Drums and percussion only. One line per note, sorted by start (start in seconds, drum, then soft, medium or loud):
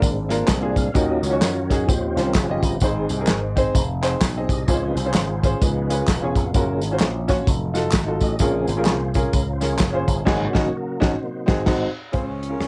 0.02 kick loud
0.02 closed hi-hat medium
0.02 tambourine medium
0.30 snare soft
0.30 closed hi-hat medium
0.30 tambourine medium
0.47 kick loud
0.47 snare loud
0.47 clap medium
0.47 closed hi-hat medium
0.47 tambourine medium
0.76 kick medium
0.76 closed hi-hat medium
0.76 tambourine medium
0.95 kick loud
0.95 closed hi-hat medium
0.95 tambourine medium
1.23 closed hi-hat medium
1.23 tambourine medium
1.41 snare medium
1.41 clap medium
1.41 closed hi-hat medium
1.41 tambourine medium
1.70 kick medium
1.70 snare soft
1.70 closed hi-hat medium
1.70 tambourine medium
1.89 kick loud
1.89 closed hi-hat medium
1.89 tambourine medium
2.17 snare soft
2.17 closed hi-hat medium
2.17 tambourine medium
2.34 kick loud
2.34 snare loud
2.34 clap medium
2.34 closed hi-hat medium
2.34 tambourine medium
2.63 kick medium
2.63 closed hi-hat medium
2.63 tambourine medium
2.80 kick loud
2.80 closed hi-hat medium
2.80 tambourine medium
3.09 closed hi-hat medium
3.09 tambourine medium
3.27 snare medium
3.27 clap medium
3.27 closed hi-hat medium
3.27 tambourine medium
3.57 kick medium
3.57 closed hi-hat medium
3.57 tambourine medium
3.75 kick loud
3.75 closed hi-hat medium
3.75 tambourine medium
4.03 clap medium
4.03 closed hi-hat medium
4.03 tambourine medium
4.21 kick loud
4.21 snare loud
4.21 clap medium
4.21 closed hi-hat medium
4.21 tambourine medium
4.49 kick medium
4.49 closed hi-hat medium
4.49 tambourine medium
4.68 kick loud
4.68 closed hi-hat medium
4.68 tambourine medium
4.97 closed hi-hat medium
4.97 tambourine medium
5.13 snare medium
5.13 clap medium
5.13 closed hi-hat medium
5.13 tambourine medium
5.43 kick medium
5.43 closed hi-hat medium
5.43 tambourine medium
5.62 kick loud
5.62 closed hi-hat medium
5.62 tambourine medium
5.90 closed hi-hat medium
5.90 tambourine medium
6.08 kick loud
6.08 snare loud
6.08 clap medium
6.08 closed hi-hat medium
6.08 tambourine medium
6.35 kick medium
6.35 closed hi-hat medium
6.35 tambourine medium
6.54 kick loud
6.54 closed hi-hat medium
6.54 tambourine medium
6.81 closed hi-hat medium
6.81 tambourine medium
6.99 snare medium
6.99 clap medium
6.99 closed hi-hat medium
6.99 tambourine medium
7.28 kick medium
7.28 snare soft
7.28 closed hi-hat medium
7.28 tambourine medium
7.47 kick loud
7.47 closed hi-hat medium
7.47 tambourine medium
7.75 snare soft
7.75 closed hi-hat medium
7.75 tambourine medium
7.92 kick loud
7.92 snare loud
7.92 clap medium
7.92 closed hi-hat medium
7.92 tambourine medium
8.21 kick medium
8.21 closed hi-hat medium
8.21 tambourine medium
8.39 kick loud
8.39 closed hi-hat medium
8.39 tambourine medium
8.67 closed hi-hat medium
8.67 tambourine medium
8.85 snare loud
8.85 clap medium
8.85 closed hi-hat medium
8.85 tambourine medium
9.14 kick medium
9.14 closed hi-hat medium
9.14 tambourine medium
9.33 kick loud
9.33 closed hi-hat medium
9.33 tambourine medium
9.61 snare soft
9.61 closed hi-hat medium
9.61 tambourine medium
9.79 kick loud
9.79 snare loud
9.79 clap medium
9.79 closed hi-hat medium
9.79 tambourine loud
10.08 kick medium
10.08 closed hi-hat medium
10.08 tambourine medium
10.27 kick loud
10.27 snare loud
10.27 crash medium
10.55 kick loud
10.55 snare loud
11.02 kick loud
11.02 snare loud
11.48 kick loud
11.48 snare loud
11.66 kick loud
11.66 snare loud
11.66 crash medium
12.13 kick medium
12.13 closed hi-hat medium
12.43 closed hi-hat medium
12.61 cross-stick medium
12.61 closed hi-hat medium